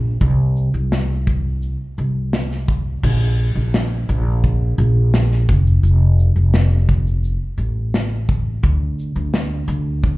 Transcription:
Already playing: upright bass A#1
0.21 upright bass C2, kick, shaker
0.56 shaker
0.74 upright bass C2
0.92 snare, shaker
1.27 kick, shaker
1.62 shaker
1.98 upright bass C2, shaker
2.33 snare, shaker
2.51 snare
2.68 kick, shaker
3.03 upright bass A#1, kick, crash
3.40 shaker
3.55 upright bass A#1, shaker
3.74 snare, shaker
4.09 upright bass A#1, shaker
4.44 kick, shaker
4.78 upright bass A#1, shaker
5.14 snare, shaker
5.32 snare
5.49 upright bass F1, kick, shaker
5.67 shaker
5.83 upright bass F1, shaker
6.19 shaker
6.36 upright bass F1
6.54 snare, shaker
6.89 kick, shaker
7.07 shaker
7.24 shaker
7.58 upright bass A1, shaker
7.94 snare, shaker
8.29 kick, shaker
8.63 upright bass D2, kick, shaker
8.99 shaker
9.16 upright bass D2
9.34 snare, shaker
9.68 upright bass D2, shaker
10.03 kick, shaker

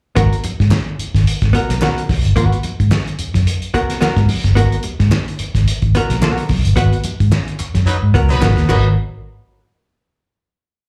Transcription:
0.15 fingered electric bass G#1, hollow-body jazz guitar B3 F#4 A#4, kick, closed hi-hat, muted conga
0.33 closed hi-hat
0.44 muted fingered electric bass stroke, closed hi-hat, muted conga
0.60 fingered electric bass G#2, kick, snare, closed hi-hat
0.71 snare, clap, high conga
0.99 muted fingered electric bass stroke, closed hi-hat
1.15 fingered electric bass G#1, kick, snare, closed hi-hat
1.27 closed hi-hat
1.42 fingered electric bass G#1, kick, snare, closed hi-hat
1.53 hollow-body jazz guitar B3 F#4 A#4, closed hi-hat, muted conga, low conga
1.69 fingered electric bass B1, snare, closed hi-hat
1.81 hollow-body jazz guitar B3 F#4 A#4, snare, clap, high conga
1.98 closed hi-hat
2.09 fingered electric bass B1, kick, snare, open hi-hat, high conga
2.25 fingered electric bass G1, closed hi-hat
2.36 fingered electric bass G#1, hollow-body jazz guitar B3 F#4 B4, kick, closed hi-hat, muted conga
2.52 closed hi-hat
2.63 muted fingered electric bass stroke, closed hi-hat, muted conga
2.80 fingered electric bass G#2, kick, closed hi-hat
2.91 snare, clap, high conga
3.07 closed hi-hat
3.19 muted fingered electric bass stroke, closed hi-hat
3.34 fingered electric bass F#2, kick, snare, closed hi-hat
3.47 closed hi-hat
3.62 closed hi-hat
3.74 hollow-body jazz guitar B3 F#4 A#4, kick, closed hi-hat
3.89 snare, closed hi-hat
4.01 hollow-body jazz guitar B3 F#4 A#4, snare, clap, high conga
4.17 fingered electric bass G#2, kick, snare, closed hi-hat
4.29 open hi-hat, high conga
4.44 fingered electric bass G1, kick, snare, closed hi-hat
4.55 fingered electric bass G#1, hollow-body jazz guitar B3 F#4 A#4, kick, closed hi-hat, muted conga
4.72 closed hi-hat
4.83 muted fingered electric bass stroke, closed hi-hat, muted conga
4.99 fingered electric bass G#2, kick, snare, closed hi-hat
5.11 snare, clap, high conga
5.28 closed hi-hat
5.39 muted fingered electric bass stroke, closed hi-hat
5.55 fingered electric bass G#1, kick, snare, closed hi-hat
5.68 closed hi-hat
5.82 fingered electric bass G#1, kick, closed hi-hat
5.95 hollow-body jazz guitar B3 F#4 A#4, closed hi-hat, muted conga, low conga
6.09 fingered electric bass B1, snare, closed hi-hat
6.21 hollow-body jazz guitar B3 F#4 A#4, snare, clap, high conga
6.38 closed hi-hat
6.49 fingered electric bass B1, kick, snare, open hi-hat, high conga
6.65 fingered electric bass G1, closed hi-hat
6.76 fingered electric bass G#1, hollow-body jazz guitar B3 F#4 B4, kick, closed hi-hat, muted conga
6.93 closed hi-hat
7.04 muted fingered electric bass stroke, closed hi-hat, muted conga
7.20 fingered electric bass G#2, kick, closed hi-hat
7.32 snare, clap, high conga
7.48 closed hi-hat
7.59 muted fingered electric bass stroke, clap, closed hi-hat
7.74 fingered electric bass F#2, kick, snare, closed hi-hat
7.86 horn section F#3 D#4 B4, closed hi-hat
8.03 fingered electric bass G#2
8.14 fingered electric bass C#2, hollow-body jazz guitar B3 F#4 A#4, kick, closed hi-hat, muted conga
8.29 fingered electric bass B1, horn section F#3 D#4 B4, snare, closed hi-hat
8.40 fingered electric bass G#1, hollow-body jazz guitar B3 F#4 A#4, snare, clap, high conga
8.57 fingered electric bass D#2, kick, snare, closed hi-hat
8.69 fingered electric bass G#1, horn section F#3 D#4 B4, hollow-body jazz guitar B3 F#4 A#4, kick, clap, crash, muted conga

